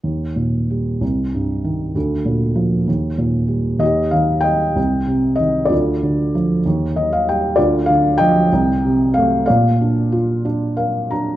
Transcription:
<<
  \new Staff \with { instrumentName = "Felt piano" } { \time 6/8 \key ees \major \tempo 4. = 64 << { r2. | r2. | ees''8 f''8 g''4. ees''8 | d''4 r4 ees''16 f''16 g''8 |
d''8 f''8 g''4. f''8 | f''4 r4 f''8 bes''8 | } \\ { r2. | r2. | g'4 ees''4. r8 | f'4. r4. |
f'4 ees''4. r8 | d''4. r4. | } >> }
  \new Staff \with { instrumentName = "Felt piano" } { \clef bass \time 6/8 \key ees \major ees,8 bes,8 g8 c,8 g,8 ees8 | d,8 bes,8 f8 ees,8 bes,8 g8 | ees,8 ees8 g8 c,8 c8 ees8 | d,8 d8 f8 ees,8 ees8 g8 |
d,8 d8 f8 c,8 c8 a8 | bes,8 d'8 f'8 d'8 bes'8 d'8 | }
>>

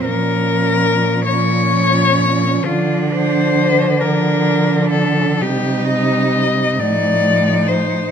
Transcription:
<<
  \new Staff \with { instrumentName = "Cello" } { \time 6/8 \key bes \minor \tempo 4. = 45 bes'4. des''4. | \key bes \major f'8 c''4 bes'4 a'8 | g'8 ees''4 d''4 c''8 | }
  \new Staff \with { instrumentName = "Cello" } { \time 6/8 \key bes \minor des'4. des'4. | \key bes \major d'4. d'4. | ees'4. ees'4. | }
  \new Staff \with { instrumentName = "Cello" } { \clef bass \time 6/8 \key bes \minor f4. f4. | \key bes \major f4. f4. | g4. f4. | }
  \new Staff \with { instrumentName = "Cello" } { \clef bass \time 6/8 \key bes \minor bes,2. | \key bes \major d2. | c4. a,4. | }
>>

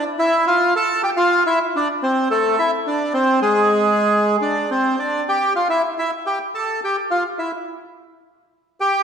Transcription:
\new Staff \with { instrumentName = "Bandoneon" } { \time 4/4 \key d \minor \tempo 4 = 106 r16 <e' e''>8 <f' f''>8 <a' a''>8 <g' g''>16 <f' f''>8 <e' e''>8 <d' d''>8 <c' c''>8 | <a a'>8 <e' e''>8 <d' d''>8 <c' c''>8 <gis gis'>4.~ <gis gis'>16 <d' d''>16~ | <d' d''>16 <c' c''>8 <d' d''>8 <g' g''>8 <f' f''>16 <e' e''>8 <e' e''>8 <g' g''>8 <a' a''>8 | <g' g''>8 <f' f''>8 <e' e''>8 r2 <g' g''>8 | }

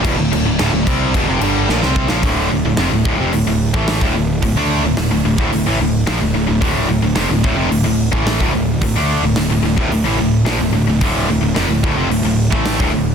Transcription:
<<
  \new Staff \with { instrumentName = "Distorted electric guitar" } { \clef bass \time 4/4 \key d \minor \tempo 4 = 109 <e, b,>16 <d, a,>16 <d, a,>16 <d, a,>16 <d, a,>16 <d, a,>16 <c g c'>8 <e, b,>16 <f, c>16 <g, d g>8 <bes, f>16 <c g c'>8 <bes, f>16 | <d, a, d>8 <d, a,>16 <d, a,>16 <f, c>16 <d, a,>16 <d, a,>16 <f, c>16 <d, a,>16 <d, a,>8 <a, e a>8 <d, a,>16 <d, a,>8 | <d, a,>16 <d a d'>8 <d, a,>16 <d, a,>16 <d, a,>16 <d, a,>16 <d, a,>16 <d, a,>16 <a, e>16 <d, a,>8 <bes, f>16 <d, a,>16 <d, a,>16 <d, a,>16 | <d, a, d>8 <d, a,>16 <d, a,>16 <f, c>16 <d, a,>16 <d, a,>16 <f, c>16 <d, a,>16 <d, a,>8 <a, e a>8 <d, a,>16 <d, a,>8 |
<d, a,>16 <d a d'>8 <d, a,>16 <d, a,>16 <d, a,>16 <d, a,>16 <d, a,>16 <d, a,>16 <a, e>16 <d, a,>8 <bes, f>16 <d, a,>16 <d, a,>16 <d, a,>16 | <d, a, d>8 <d, a,>16 <d, a,>16 <f, c>16 <d, a,>16 <d, a,>16 <f, c>16 <d, a,>16 <d, a,>8 <a, e a>8 <d, a,>16 <d, a,>8 | }
  \new Staff \with { instrumentName = "Distorted electric guitar" } { \clef bass \time 4/4 \key d \minor <e, b,>16 <d, a,>16 <d, a,>16 <d, a,>16 <d, a,>16 <d, a,>16 <c g c'>8 <e, b,>16 <f, c>16 <g, d g>8 <bes, f>16 <c g c'>8 <bes, f>16 | <d, a, d>8 <d, a,>16 <d, a,>16 <f, c>16 <d, a,>16 <d, a,>16 <f, c>16 <d, a,>16 <d, a,>8 <a, e a>8 <d, a,>16 <d, a,>8 | <d, a,>16 <d a d'>8 <d, a,>16 <d, a,>16 <d, a,>16 <d, a,>16 <d, a,>16 <d, a,>16 <a, e>16 <d, a,>8 <bes, f>16 <d, a,>16 <d, a,>16 <d, a,>16 | <d, a, d>8 <d, a,>16 <d, a,>16 <f, c>16 <d, a,>16 <d, a,>16 <f, c>16 <d, a,>16 <d, a,>8 <a, e a>8 <d, a,>16 <d, a,>8 |
<d, a,>16 <d a d'>8 <d, a,>16 <d, a,>16 <d, a,>16 <d, a,>16 <d, a,>16 <d, a,>16 <a, e>16 <d, a,>8 <bes, f>16 <d, a,>16 <d, a,>16 <d, a,>16 | <d, a, d>8 <d, a,>16 <d, a,>16 <f, c>16 <d, a,>16 <d, a,>16 <f, c>16 <d, a,>16 <d, a,>8 <a, e a>8 <d, a,>16 <d, a,>8 | }
  \new Staff \with { instrumentName = "Picked electric bass" } { \clef bass \time 4/4 \key d \minor e,,16 d,,16 d,,16 d,,16 d,,16 d,,16 c,8 e,,16 f,,16 g,,8 bes,,16 c,8 bes,,16 | d,,8 d,,16 d,,16 f,,16 d,,16 d,,16 f,,16 d,,16 d,,8 a,,8 d,,16 d,,8 | d,,16 d,8 d,,16 d,,16 d,,16 d,,16 d,,16 d,,16 a,,16 d,,8 bes,,16 d,,16 d,,16 d,,16 | d,,8 d,,16 d,,16 f,,16 d,,16 d,,16 f,,16 d,,16 d,,8 a,,8 d,,16 d,,8 |
d,,16 d,8 d,,16 d,,16 d,,16 d,,16 d,,16 d,,16 a,,16 d,,8 bes,,16 d,,16 d,,16 d,,16 | d,,8 d,,16 d,,16 f,,16 d,,16 d,,16 f,,16 d,,16 d,,8 a,,8 d,,16 d,,8 | }
  \new DrumStaff \with { instrumentName = "Drums" } \drummode { \time 4/4 <cymc bd>8 cymc8 <cymc sn>8 <cymc bd>8 <cymc bd>8 cymc8 sn16 sn16 bd16 sn16 | <hho bd>4 <hho sn>8 bd8 hho8. bd16 <hho sn>16 bd8. | <hho bd>4 <hho sn>8. bd16 hho4 <hho sn>4 | <hho bd>4 <hho sn>8 bd8 hho8. bd16 <hho sn>16 bd8. |
<hho bd>4 <hho sn>8. bd16 hho4 <hho sn>4 | <hho bd>4 <hho sn>8 bd8 hho8. bd16 <hho sn>16 bd8. | }
>>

